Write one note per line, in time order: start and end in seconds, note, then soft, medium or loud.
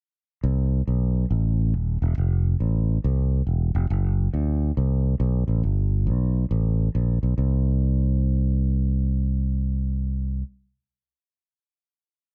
0.43 0.80 C2 medium
0.87 1.24 B1 medium
1.31 1.74 A1 medium
1.74 1.97 D#1 medium
2.02 2.15 E1 medium
2.18 2.54 F1 medium
2.60 2.97 A1 medium
3.04 3.41 C2 medium
3.47 3.70 E1 medium
3.75 3.88 F1 medium
3.90 4.27 F#1 medium
4.33 4.70 D2 medium
4.77 5.14 C2 medium
5.20 5.44 B1 medium
5.48 5.61 A1 medium
5.63 6.08 G1 medium
6.07 6.44 B1 medium
6.51 6.88 A1 medium
6.95 7.18 A#1 medium
7.23 7.36 B1 medium
7.38 10.42 C2 medium